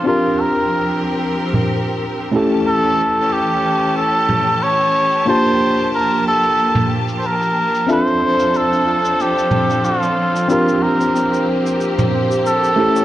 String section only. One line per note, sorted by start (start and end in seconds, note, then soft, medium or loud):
0.06 2.32 F3 medium
0.06 2.32 C4 medium
0.06 2.32 G4 medium
0.06 2.32 A#4 medium
2.34 5.25 E3 medium
2.34 5.25 C#4 medium
2.34 7.85 G4 medium
2.34 7.85 A5 medium
5.27 12.73 F3 medium
5.27 7.85 A#3 medium
7.88 12.73 C4 medium
7.88 10.46 D4 medium
7.88 10.46 A4 medium
10.50 12.75 A#3 medium
10.50 13.05 G4 medium
12.77 13.05 E3 medium
12.77 13.05 A3 medium
12.77 13.05 C#4 medium